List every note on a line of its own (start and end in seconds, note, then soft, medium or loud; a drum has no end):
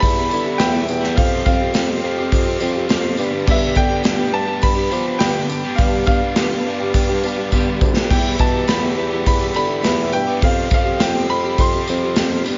0.00 0.28 E2 medium
0.00 0.18 E3 medium
0.00 0.18 G3 medium
0.00 0.16 B3 medium
0.00 0.15 E4 medium
0.00 0.15 G4 medium
0.00 12.58 G4 medium
0.00 1.15 B4 medium
0.00 1.15 E5 medium
0.00 1.15 B5 medium
0.00 0.60 B5 loud
0.00 kick medium
0.00 open hi-hat medium
0.00 tambourine medium
0.16 0.27 E3 medium
0.16 0.30 G3 medium
0.16 0.30 B3 medium
0.16 0.31 E4 medium
0.16 0.31 G4 soft
0.29 0.57 D3 medium
0.29 0.59 E3 medium
0.29 0.60 G3 medium
0.29 0.60 B3 medium
0.29 0.61 E4 medium
0.29 tambourine medium
0.34 0.44 G4 medium
0.45 0.59 B3 soft
0.45 0.60 E4 soft
0.45 0.60 G4 soft
0.58 1.02 E2 medium
0.58 0.85 E2 loud
0.58 1.02 B2 medium
0.58 0.75 E3 loud
0.58 0.75 G3 loud
0.58 0.73 B3 loud
0.58 0.89 G4 medium
0.58 1.12 G5 medium
0.58 snare loud
0.58 open hi-hat medium
0.58 tambourine medium
0.62 0.72 E4 loud
0.73 0.86 E3 medium
0.73 0.87 G3 medium
0.73 0.87 B3 medium
0.73 0.87 E4 medium
0.87 1.14 E2 medium
0.87 1.15 G3 medium
0.87 1.16 B3 medium
0.87 1.17 E4 medium
0.87 1.17 G4 medium
0.87 muted overdriven electric guitar stroke medium
0.87 tambourine medium
1.01 1.16 G3 medium
1.01 1.15 B3 medium
1.01 1.14 E4 medium
1.01 snare soft
1.05 1.15 E3 medium
1.15 1.43 F2 medium
1.15 1.44 F3 loud
1.15 1.46 G3 loud
1.15 1.46 C4 loud
1.15 1.46 F4 medium
1.15 1.47 G4 loud
1.15 3.17 C5 medium
1.15 1.44 F5 medium
1.15 3.17 F5 medium
1.15 3.17 C6 medium
1.15 kick loud
1.15 open hi-hat medium
1.45 1.71 F2 medium
1.45 1.73 F3 medium
1.45 1.74 G3 medium
1.45 1.75 C4 medium
1.45 1.60 F4 medium
1.45 1.77 G4 medium
1.45 3.15 F5 medium
1.45 kick medium
1.45 tambourine medium
1.60 1.74 C4 soft
1.60 1.74 F4 medium
1.60 1.74 G4 medium
1.74 2.00 F2 loud
1.74 2.02 F3 medium
1.74 1.92 G3 loud
1.74 1.90 C4 medium
1.74 1.89 F4 loud
1.74 1.88 G4 loud
1.74 snare loud
1.74 open hi-hat medium
1.74 tambourine medium
1.88 2.04 G3 medium
1.88 2.04 C4 medium
1.88 2.18 F4 soft
1.88 2.05 G4 medium
2.03 2.29 F2 medium
2.03 2.46 F3 medium
2.03 2.20 G3 medium
2.03 2.18 C4 medium
2.03 2.17 G4 medium
2.17 2.49 G3 medium
2.17 2.46 C4 medium
2.17 2.46 F4 medium
2.17 2.45 G4 medium
2.32 2.58 F2 medium
2.32 kick medium
2.32 open hi-hat medium
2.32 tambourine medium
2.45 2.60 G3 medium
2.45 2.61 C4 medium
2.45 2.61 F4 medium
2.45 2.63 G4 medium
2.60 2.86 F2 medium
2.60 2.87 F3 medium
2.60 2.89 G3 medium
2.60 2.89 C4 medium
2.60 2.75 F4 medium
2.60 2.91 G4 medium
2.60 tambourine medium
2.75 2.88 C4 soft
2.75 2.89 F4 medium
2.75 2.90 G4 medium
2.88 3.15 F2 loud
2.88 3.16 F3 medium
2.88 3.06 G3 medium
2.88 3.04 C4 loud
2.88 3.19 F4 loud
2.88 3.02 G4 loud
2.88 snare loud
2.88 open hi-hat medium
2.88 tambourine medium
3.03 3.18 G3 medium
3.03 3.18 C4 medium
3.03 3.20 G4 medium
3.16 3.45 G2 medium
3.16 3.44 G2 loud
3.16 3.45 D3 loud
3.16 3.35 G3 loud
3.16 3.33 B3 loud
3.16 3.32 D4 loud
3.16 3.31 G4 loud
3.16 10.37 B4 medium
3.16 8.06 D5 medium
3.16 5.47 B5 medium
3.16 tambourine medium
3.31 3.46 G3 medium
3.31 3.47 B3 medium
3.31 3.48 D4 medium
3.31 3.48 G4 medium
3.45 4.03 G2 loud
3.45 3.73 G2 medium
3.45 4.03 D3 loud
3.45 3.74 G3 loud
3.45 3.75 B3 loud
3.45 3.76 D4 loud
3.45 3.77 G4 loud
3.45 kick loud
3.45 crash medium
3.51 3.79 E5 medium
3.75 4.02 D3 medium
3.75 4.04 G3 medium
3.75 4.05 B3 medium
3.75 4.05 D4 medium
3.75 4.06 G4 medium
3.75 4.30 G5 loud
3.75 kick medium
3.75 tambourine medium
3.89 4.02 G3 soft
3.89 4.04 B3 soft
3.89 4.04 D4 medium
3.89 4.04 G4 medium
4.03 5.18 G2 medium
4.03 4.31 G2 medium
4.03 4.48 D3 medium
4.03 4.21 G3 loud
4.03 4.20 B3 medium
4.03 4.18 D4 medium
4.03 4.17 G4 loud
4.03 snare loud
4.03 open hi-hat medium
4.03 tambourine medium
4.17 4.31 G3 medium
4.17 4.33 B3 medium
4.17 4.34 D4 medium
4.17 4.35 G4 medium
4.31 4.59 G2 medium
4.31 4.49 G3 medium
4.31 4.49 B3 medium
4.31 4.47 D4 medium
4.31 4.47 G4 medium
4.31 4.61 A5 loud
4.47 4.78 G3 medium
4.47 4.77 B3 medium
4.47 4.75 D4 medium
4.47 4.75 G4 medium
4.62 4.89 G2 medium
4.62 5.22 B5 loud
4.62 kick medium
4.62 open hi-hat medium
4.62 tambourine medium
4.75 4.89 G3 medium
4.75 4.91 B3 medium
4.75 4.91 D4 medium
4.75 4.93 G4 medium
4.90 5.17 F3 medium
4.90 5.20 G3 medium
4.90 5.21 B3 medium
4.90 5.20 D4 medium
4.90 5.22 G4 medium
4.90 tambourine medium
5.04 5.19 G3 soft
5.04 5.19 B3 soft
5.04 5.19 D4 soft
5.04 5.20 G4 soft
5.19 5.63 G2 loud
5.19 5.46 G2 loud
5.19 5.64 D3 loud
5.19 5.36 G3 medium
5.19 5.36 B3 loud
5.19 5.33 D4 loud
5.19 5.33 G4 loud
5.19 5.79 G5 loud
5.19 snare loud
5.19 open hi-hat medium
5.19 tambourine medium
5.34 5.49 G3 medium
5.34 5.48 B3 medium
5.34 5.48 D4 medium
5.34 5.49 G4 medium
5.48 5.78 G3 medium
5.48 5.78 B3 medium
5.48 5.78 D4 medium
5.48 5.78 G4 medium
5.48 8.06 A5 medium
5.48 muted overdriven electric guitar stroke medium
5.48 tambourine medium
5.64 5.79 G3 medium
5.64 5.81 B3 medium
5.64 5.80 D4 medium
5.64 5.81 G4 medium
5.75 6.36 G2 loud
5.75 6.04 G2 loud
5.75 6.37 D3 loud
5.75 6.05 F5 medium
5.75 kick loud
5.75 open hi-hat medium
5.75 tambourine soft
5.79 6.07 G3 loud
5.79 6.08 B3 loud
5.79 6.09 D4 loud
5.79 6.10 G4 loud
6.06 6.33 G2 medium
6.06 6.38 G3 medium
6.06 6.39 B3 medium
6.06 6.39 D4 medium
6.06 7.77 F5 loud
6.06 kick medium
6.06 tambourine medium
6.10 6.40 G4 medium
6.21 6.36 G3 soft
6.21 6.37 B3 soft
6.21 6.37 D4 soft
6.21 6.36 G4 medium
6.36 6.62 G2 medium
6.36 6.80 G2 medium
6.36 6.81 D3 medium
6.36 6.55 G3 medium
6.36 6.54 B3 loud
6.36 snare loud
6.36 open hi-hat medium
6.36 tambourine medium
6.40 6.52 D4 loud
6.40 6.52 G4 loud
6.52 6.66 G3 medium
6.52 6.68 B3 medium
6.52 6.68 D4 medium
6.52 6.69 G4 medium
6.66 6.91 G2 medium
6.66 6.83 G3 medium
6.66 6.82 B3 medium
6.66 6.80 D4 medium
6.70 6.80 G4 medium
6.80 7.13 G3 medium
6.80 7.10 B3 medium
6.80 7.09 D4 medium
6.80 7.09 G4 medium
6.94 7.20 G2 medium
6.94 kick medium
6.94 open hi-hat medium
6.94 tambourine medium
7.09 7.24 G3 medium
7.09 7.24 B3 medium
7.09 7.25 D4 medium
7.09 7.27 G4 medium
7.23 7.49 G2 medium
7.23 7.54 G3 medium
7.23 7.55 B3 medium
7.23 7.55 D4 medium
7.23 7.56 G4 medium
7.23 tambourine medium
7.37 7.51 G3 soft
7.37 7.51 B3 medium
7.37 7.52 D4 soft
7.37 7.52 G4 medium
7.52 7.78 G2 medium
7.52 7.96 G2 medium
7.52 7.96 D3 medium
7.52 7.70 G3 loud
7.52 7.68 B3 loud
7.52 kick medium
7.52 tambourine medium
7.56 7.67 D4 loud
7.56 7.66 G4 medium
7.66 7.81 B3 medium
7.66 7.81 D4 medium
7.66 7.82 G4 medium
7.71 7.82 G3 medium
7.81 8.07 D2 medium
7.81 7.95 G3 medium
7.81 7.96 B3 medium
7.81 7.95 D4 medium
7.81 7.94 G4 medium
7.81 muted overdriven electric guitar stroke medium
7.81 kick loud
7.81 tambourine medium
7.96 8.11 G3 medium
7.96 8.10 B3 medium
7.96 8.09 D4 medium
7.96 8.13 G4 medium
7.96 snare medium
8.10 8.66 E2 medium
8.10 8.36 E2 medium
8.10 8.67 B2 loud
8.10 8.38 E3 loud
8.10 8.40 G3 loud
8.10 8.40 B3 loud
8.10 8.38 E4 medium
8.10 8.42 G4 loud
8.10 10.40 E5 medium
8.10 8.40 G5 medium
8.10 10.40 B5 medium
8.10 kick loud
8.10 open hi-hat medium
8.10 crash loud
8.38 8.65 B2 medium
8.38 8.68 E3 medium
8.38 8.69 G3 medium
8.38 8.69 B3 medium
8.38 8.53 E4 medium
8.38 8.70 A5 medium
8.38 kick medium
8.38 tambourine medium
8.43 8.70 G4 medium
8.53 8.68 B3 soft
8.53 8.68 E4 medium
8.53 8.68 G4 medium
8.67 9.11 E2 medium
8.67 8.94 E2 medium
8.67 9.12 B2 loud
8.67 8.84 E3 medium
8.67 8.84 G3 loud
8.67 8.82 B3 loud
8.67 8.83 E4 medium
8.67 8.82 G4 loud
8.67 9.26 B5 medium
8.67 snare loud
8.67 open hi-hat medium
8.67 tambourine medium
8.82 8.96 E3 medium
8.82 8.98 G3 medium
8.82 8.97 B3 medium
8.82 9.11 E4 soft
8.82 8.99 G4 medium
8.97 9.22 E2 medium
8.97 9.12 E3 medium
8.97 9.12 G3 medium
8.97 9.10 B3 medium
8.97 9.10 G4 medium
9.10 9.41 E3 medium
9.10 9.41 G3 medium
9.10 9.39 B3 medium
9.10 9.41 E4 soft
9.10 9.38 G4 medium
9.26 9.52 E2 medium
9.26 9.54 B5 medium
9.26 kick medium
9.26 open hi-hat medium
9.26 tambourine medium
9.39 9.52 E3 medium
9.39 9.54 G3 medium
9.39 9.53 B3 medium
9.39 9.56 G4 medium
9.43 9.55 B3 soft
9.43 9.56 E4 soft
9.53 9.81 D3 medium
9.53 9.82 E3 medium
9.53 9.84 G3 medium
9.53 9.83 B3 medium
9.53 9.85 G4 medium
9.53 10.09 B5 medium
9.53 tambourine medium
9.57 9.68 E4 medium
9.67 9.81 B3 soft
9.67 9.82 E4 soft
9.67 9.83 G4 medium
9.82 10.26 E2 medium
9.82 10.10 E2 medium
9.82 10.27 B2 loud
9.82 9.99 E3 loud
9.82 9.98 G3 loud
9.82 9.96 B3 loud
9.82 10.12 E4 medium
9.82 9.96 G4 loud
9.82 snare loud
9.82 open hi-hat medium
9.82 tambourine medium
9.96 10.11 E3 medium
9.96 10.12 G3 medium
9.96 10.12 B3 medium
9.96 10.13 G4 medium
10.12 10.39 G2 medium
10.12 10.40 G3 medium
10.12 10.40 B3 medium
10.12 10.41 E4 medium
10.12 10.41 G4 medium
10.12 10.40 G5 medium
10.12 muted overdriven electric guitar stroke medium
10.12 tambourine medium
10.27 10.41 E3 medium
10.27 10.43 G3 medium
10.27 10.40 B3 medium
10.27 10.44 G4 medium
10.41 10.68 F2 medium
10.41 10.70 F3 loud
10.41 10.72 G3 loud
10.41 10.72 C4 loud
10.41 10.70 F4 medium
10.41 10.74 G4 loud
10.41 12.43 C5 medium
10.41 10.73 F5 medium
10.41 12.43 F5 medium
10.41 12.43 C6 medium
10.41 kick loud
10.41 open hi-hat medium
10.71 10.97 F2 medium
10.71 10.98 F3 medium
10.71 11.00 G3 medium
10.71 11.00 C4 medium
10.71 10.85 F4 medium
10.71 11.02 G4 medium
10.71 11.02 F5 medium
10.71 kick loud
10.71 tambourine medium
10.84 10.99 C4 soft
10.84 10.99 F4 medium
10.84 10.99 G4 medium
10.99 11.26 F2 medium
10.99 11.28 F3 medium
10.99 11.17 G3 medium
10.99 11.15 C4 medium
10.99 11.14 F4 medium
10.99 11.13 G4 loud
10.99 11.30 G5 medium
10.99 snare loud
10.99 open hi-hat medium
10.99 tambourine medium
11.14 11.30 G3 medium
11.14 11.30 C4 medium
11.14 11.44 F4 medium
11.14 11.32 G4 medium
11.29 11.54 F2 medium
11.29 11.72 F3 medium
11.29 11.46 G3 medium
11.29 11.44 C4 medium
11.29 11.43 G4 medium
11.29 11.59 B5 loud
11.43 11.76 G3 medium
11.43 11.74 C4 medium
11.43 11.74 F4 soft
11.43 11.72 G4 medium
11.58 11.83 F2 loud
11.58 12.13 C6 loud
11.58 kick medium
11.58 open hi-hat medium
11.58 tambourine medium
11.73 11.88 G3 medium
11.73 11.88 C4 medium
11.73 11.88 F4 medium
11.73 11.90 G4 medium
11.87 12.13 F2 medium
11.87 12.15 F3 medium
11.87 12.17 G3 medium
11.87 12.17 C4 medium
11.87 12.03 F4 medium
11.87 12.19 G4 medium
11.87 tambourine medium
12.03 12.17 C4 soft
12.03 12.17 F4 soft
12.03 12.16 G4 medium
12.16 12.42 F2 loud
12.16 12.43 F3 loud
12.16 12.33 G3 loud
12.16 12.31 C4 medium
12.16 12.46 F4 medium
12.16 12.30 G4 loud
12.16 snare loud
12.16 open hi-hat medium
12.16 tambourine loud
12.30 12.46 G3 medium
12.30 12.44 C4 medium
12.30 12.47 G4 medium
12.44 12.58 G2 loud
12.44 12.58 D3 loud
12.44 12.58 G3 loud
12.44 12.58 B3 loud
12.44 12.58 D4 loud
12.44 12.58 G4 loud
12.44 12.58 B4 medium
12.44 12.58 D5 medium
12.44 12.58 B5 medium
12.44 tambourine medium